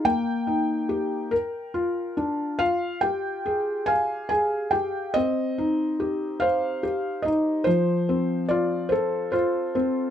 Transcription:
\new Staff \with { instrumentName = "Felt piano" } { \time 6/8 \key f \dorian \tempo 4. = 48 << { g''2~ g''8 r8 | f''8 g''4 aes''8 aes''8 g''8 | ees''4. f''4 ees''8 | c''4 d''8 c''8 c''4 | } \\ { bes8 ees'8 g'8 bes'8 f'8 d'8 | f'8 g'8 aes'8 f''8 aes'8 g'8 | c'8 ees'8 g'8 c''8 g'8 ees'8 | f8 c'8 f'8 a'8 f'8 c'8 | } >> }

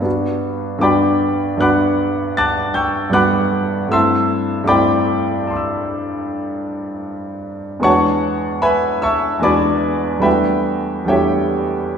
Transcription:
<<
  \new Staff \with { instrumentName = "Grand piano" } { \time 5/4 \key e \dorian \tempo 4 = 76 << { r4 <d'' g'' b'' d'''>4 <fis'' b'' d''' fis'''>4 <a'' d''' fis''' a'''>8 <g'' cis''' e''' g'''>8 <fis'' b'' d''' fis'''>4 | <e'' a'' c''' e'''>4 <d'' g'' b'' d'''>1 | <cis'' fis'' a'' cis'''>4 <b' e'' gis'' b''>8 <e'' a'' cis''' e'''>8 <d'' gis'' b'' d'''>4 <b' e'' g'' b''>4 <g' cis'' e'' g''>4 | } \\ { r1 r4 | r2 <a'' c''' d''' e'''>2. | r1 r4 | } >> }
  \new Staff \with { instrumentName = "Grand piano" } { \time 5/4 \key e \dorian <g, g b d' fis'>4 <g, g b d' fis'>4 <g, g b d' fis'>2 <g, g b d' fis'>4 | <g, a c' d' e'>4 <g, a c' d' e'>1 | <e, gis b d' fis'>2 <e, gis b d' fis'>4 <e, g a d' fis'>4 <e, g a d' fis'>4 | }
>>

